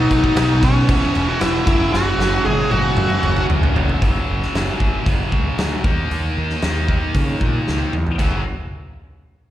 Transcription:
Already playing: distorted electric guitar B2 F#3 B3, lead electric guitar D#4
0.00 lead electric guitar D#5
0.11 picked electric bass B1, kick, crash
0.24 kick
0.36 picked electric bass B1, lead electric guitar D#4 D#5, snare, crash
0.63 lead electric guitar C#4 C#5, kick, snare, crash
0.87 picked electric bass E1, distorted electric guitar E2 B2 E3, kick, crash
1.15 picked electric bass E1, crash
1.28 lead electric guitar F#4 F#5
1.40 picked electric bass E1, lead electric guitar E4 E5, snare, crash
1.65 picked electric bass F#1, distorted electric guitar F#2 C#3 F#3, lead electric guitar E4 E5, kick, crash
1.93 picked electric bass F#1, lead electric guitar F#4 F#5, snare
2.18 picked electric bass F#1, snare
2.45 picked electric bass F#1, lead electric guitar G#4 G#5, high tom
2.70 picked electric bass F#1, distorted electric guitar F#2 C#3 F#3, lead electric guitar F#4 F#5, high tom
2.97 picked electric bass F#2, mid tom
3.10 mid tom
3.23 picked electric bass F#1, mid tom
3.36 mid tom
3.50 picked electric bass C#2, mid tom
3.63 floor tom
3.74 picked electric bass F#1, distorted electric guitar F#2 C#3 F#3, floor tom
3.89 floor tom
4.00 picked electric bass F#1, distorted electric guitar F#2 C#3 F#3, kick, open hi-hat
4.29 picked electric bass F#1
4.43 snare
4.54 picked electric bass F#1, snare, open hi-hat
4.80 picked electric bass F#1, kick
5.05 picked electric bass F#1, distorted electric guitar F#2 C#3 F#3, kick, open hi-hat
5.32 picked electric bass C#2, kick
5.58 picked electric bass D2, snare, open hi-hat
5.83 picked electric bass D#2, distorted electric guitar D#3 A#3 D#4, kick
6.11 picked electric bass D#2, open hi-hat
6.38 picked electric bass D#2
6.50 snare
6.62 picked electric bass D#2, snare, open hi-hat
6.88 distorted electric guitar D#3 A#3 D#4, kick
7.14 picked electric bass C#3, kick, open hi-hat
7.41 picked electric bass A#2, kick
7.68 picked electric bass C#2, snare
7.93 picked electric bass E2, mid tom
8.07 floor tom
8.18 picked electric bass F#1, distorted electric guitar F#2 C#3 F#3, kick, crash

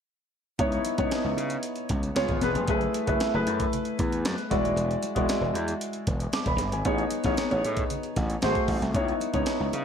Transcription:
0.59 slap bass C#2, grand piano B3 D#4 E4 C#5, kick, closed hi-hat
0.72 closed hi-hat
0.85 closed hi-hat, muted conga
0.98 slap bass C#2, grand piano B3 D#4 E4 C#5, kick, closed hi-hat
1.11 snare, closed hi-hat, high conga
1.25 slap bass C#2
1.37 slap bass C#3, closed hi-hat, muted conga
1.50 closed hi-hat
1.63 closed hi-hat
1.76 closed hi-hat
1.89 slap bass C#2, kick, closed hi-hat, muted conga, low conga
2.03 closed hi-hat
2.15 slap bass C#2, grand piano B3 F4 G#4 C#5, snare, closed hi-hat, high conga
2.28 slap bass G#1, kick, closed hi-hat
2.41 slap bass E1, grand piano B3 F4 G#4 B4, snare, closed hi-hat, high conga
2.54 slap bass F1, closed hi-hat
2.67 slap bass F#1, grand piano A3 E4 G#4 B4, kick, closed hi-hat, muted conga
2.81 closed hi-hat
2.94 closed hi-hat, muted conga
3.06 slap bass F#1, grand piano A3 E4 G#4 B4, kick, closed hi-hat
3.20 snare, closed hi-hat, high conga
3.34 slap bass F#1, grand piano A3 E4 G#4 B4
3.47 slap bass F#2, closed hi-hat, muted conga
3.60 kick, closed hi-hat
3.73 closed hi-hat, low conga
3.85 closed hi-hat
3.99 slap bass E2, kick, closed hi-hat, muted conga, low conga
4.12 closed hi-hat
4.25 slap bass F#2, snare, closed hi-hat, high conga
4.38 closed hi-hat
4.50 slap bass E1, grand piano G#3 E4 F#4 D5, kick, snare, closed hi-hat, high conga
4.64 slap bass D#1, closed hi-hat
4.76 slap bass E1, closed hi-hat, muted conga
4.91 closed hi-hat
5.03 closed hi-hat, muted conga
5.15 slap bass E1, grand piano G#3 E4 F#4 D5, kick, closed hi-hat
5.29 snare, closed hi-hat, high conga
5.41 slap bass E1
5.54 slap bass E2, closed hi-hat, muted conga
5.68 closed hi-hat
5.81 closed hi-hat
5.93 closed hi-hat
6.07 slap bass E1, kick, closed hi-hat, muted conga, low conga
6.20 closed hi-hat
6.33 grand piano D6, snare, closed hi-hat, high conga
6.46 slap bass E1, grand piano B5, kick, closed hi-hat
6.58 slap bass G1, snare, closed hi-hat, high conga
6.72 slap bass G#1, grand piano G#5, closed hi-hat
6.85 slap bass A1, grand piano B3 D#4 G#4 C#5, kick, closed hi-hat, muted conga
6.98 closed hi-hat
7.10 closed hi-hat, muted conga
7.24 slap bass A1, grand piano B3 D#4 G#4 C#5, kick, snare, closed hi-hat
7.37 snare, closed hi-hat, high conga
7.50 slap bass A1, grand piano B3 D#4 G#4 C#5, closed hi-hat
7.64 slap bass A2, closed hi-hat, muted conga
7.77 kick, closed hi-hat
7.90 closed hi-hat, low conga
8.03 closed hi-hat
8.16 slap bass A1, kick, snare, closed hi-hat, muted conga, low conga
8.30 closed hi-hat
8.42 slap bass G#1, grand piano A3 F#4 G#4 C5, snare, closed hi-hat, high conga
8.55 kick, closed hi-hat
8.68 slap bass A1, kick, snare, open hi-hat, high conga
8.82 slap bass C2, snare, closed hi-hat
8.94 slap bass C#2, grand piano B3 D#4 E4 C#5, kick, closed hi-hat, muted conga
9.08 closed hi-hat
9.20 closed hi-hat, muted conga
9.33 slap bass C#2, grand piano B3 D#4 E4 C#5, kick, closed hi-hat
9.46 snare, closed hi-hat, high conga
9.60 slap bass C#2
9.73 slap bass C#3, closed hi-hat, muted conga

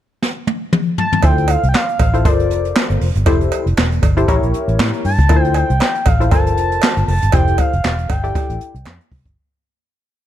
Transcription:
0.22 snare
0.47 high tom
0.73 mid tom
0.98 analog synth lead A5, floor tom
1.13 floor tom
1.23 fingered electric bass D2, analog polysynth E4 F4 A4 C5, analog synth lead G5, kick, closed hi-hat, cowbell
1.38 closed hi-hat
1.48 analog synth lead F5, closed hi-hat, cowbell
1.63 fingered electric bass C2, closed hi-hat
1.69 analog synth lead G5
1.74 analog synth lead F5, snare, clap, cowbell
1.89 closed hi-hat
1.99 fingered electric bass A1, analog polysynth A4 C5, kick, closed hi-hat, cowbell
2.14 analog polysynth E4 F4 A4 C5, closed hi-hat
2.25 fingered electric bass G1, analog polysynth F4 A4 A#4 C5, analog synth lead D5, kick, closed hi-hat, cowbell
2.40 closed hi-hat
2.51 fingered electric bass F1, closed hi-hat
2.65 closed hi-hat
2.76 snare, clap, cowbell
2.90 fingered electric bass G1, closed hi-hat
3.01 fingered electric bass F1, open hi-hat
3.15 fingered electric bass G1, closed hi-hat
3.26 fingered electric bass F1, analog polysynth E4 G4 A4 C5, kick, closed hi-hat, cowbell
3.41 closed hi-hat
3.52 closed hi-hat, cowbell
3.66 fingered electric bass F1, closed hi-hat
3.77 fingered electric bass E1, snare, clap, cowbell
3.92 closed hi-hat
4.02 fingered electric bass G1, analog polysynth A4 D5, kick, closed hi-hat, cowbell
4.17 analog polysynth E4 G4 A4 C5, closed hi-hat
4.28 fingered electric bass A1, analog polysynth E4 G4 A#4 C#5, kick, closed hi-hat, cowbell
4.43 fingered electric bass A#1, closed hi-hat
4.54 closed hi-hat
4.68 fingered electric bass A1, closed hi-hat
4.79 fingered electric bass A2, snare, clap, cowbell
4.93 closed hi-hat
5.05 fingered electric bass G2, analog synth lead A5, open hi-hat
5.19 fingered electric bass C#2, kick, closed hi-hat
5.29 fingered electric bass D2, analog polysynth E4 F4 A4 A#4, kick, closed hi-hat, cowbell
5.36 analog polysynth C5
5.43 analog synth lead G5, closed hi-hat
5.54 analog synth lead G5, closed hi-hat, cowbell
5.70 fingered electric bass C2, closed hi-hat
5.80 snare, clap, cowbell
5.95 closed hi-hat
6.06 fingered electric bass A1, analog polysynth A4 C5, analog synth lead F5, kick, closed hi-hat, cowbell
6.20 analog polysynth E4 F4 A4 C5, closed hi-hat
6.31 fingered electric bass G1, analog polysynth F4 A4 A#4 C5, analog synth lead A5, kick, closed hi-hat, cowbell
6.47 closed hi-hat
6.57 fingered electric bass F1, closed hi-hat
6.72 closed hi-hat
6.82 snare, clap, cowbell
6.97 fingered electric bass G1, closed hi-hat
7.07 fingered electric bass F1, analog synth lead A5, open hi-hat
7.22 fingered electric bass G1, closed hi-hat
7.32 fingered electric bass F1, analog polysynth E4 G4 A4 C5, analog synth lead G5, kick, closed hi-hat, cowbell
7.47 closed hi-hat
7.58 analog synth lead F5, kick, closed hi-hat, cowbell
7.73 fingered electric bass F1, closed hi-hat
7.84 fingered electric bass E1, snare, clap, cowbell
7.99 closed hi-hat
8.09 fingered electric bass G1, analog polysynth A4 C5, analog synth lead G5, kick, closed hi-hat, cowbell
8.23 analog polysynth E4 G4 A4 D5, closed hi-hat
8.35 kick, closed hi-hat, cowbell
8.50 fingered electric bass A1, closed hi-hat
8.61 closed hi-hat
8.75 fingered electric bass C2, closed hi-hat
8.85 fingered electric bass F2, snare, clap, cowbell
9.01 closed hi-hat
9.12 fingered electric bass C2, kick, open hi-hat
9.26 fingered electric bass G1, kick, closed hi-hat

